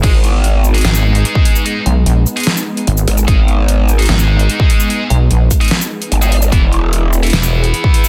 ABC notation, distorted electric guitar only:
X:1
M:4/4
L:1/16
Q:1/4=148
K:G#m
V:1 name="Distorted electric guitar"
[G,DG] z6 [G,DG]8- [G,DG] | [G,DG] z6 [G,DG] z8 | [G,DG] z6 [G,DG]8- [G,DG] | [G,DG] z6 [G,DG] z4 z [G,DG] z2 |
[E,B,E] z6 [E,B,E]8- [E,B,E] |]